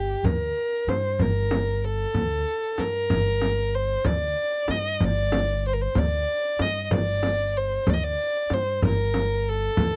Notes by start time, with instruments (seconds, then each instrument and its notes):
Already playing: upright bass G1, violin G4
0.23 upright bass D2, violin A#4, frame drum
0.87 upright bass G2, violin C5, frame drum
1.19 upright bass G1, violin A#4, frame drum
1.51 frame drum
1.84 violin A4
2.14 upright bass D2, frame drum
2.78 upright bass G2, violin A#4, frame drum
3.10 upright bass G1, frame drum
3.42 frame drum
3.75 violin C5
4.05 upright bass D2, violin D5, frame drum
4.68 upright bass G2, violin D#5, frame drum
5.00 upright bass G1, violin D5, frame drum
5.32 frame drum
5.68 violin C5
5.73 violin A#4
5.81 violin C5
5.95 upright bass D2, violin D5, frame drum
6.59 upright bass G2, violin D#5, frame drum
6.84 violin D#5
6.91 upright bass G1, violin D5, frame drum
7.23 frame drum
7.57 violin C5
7.87 upright bass D2, violin D5, frame drum
7.93 violin D#5
8.04 violin D5
8.50 upright bass G2, violin C5, frame drum
8.82 upright bass G1, violin A#4, frame drum
9.14 frame drum
9.49 violin A4
9.77 upright bass D2, frame drum